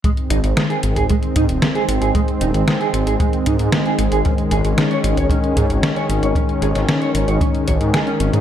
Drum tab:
HH |xxxxxxxxxxxxxxxx|xxxxxxxxxxxxxxxx|xxxxxxxxxxxxxxxx|xxxxxxxxxxxxxxxx|
SD |----o-------o---|----o-------o---|----o-------o---|---oo-------o---|
BD |o------oo-o-----|o-------o-o-----|o------oo-o-----|o-------o-o-----|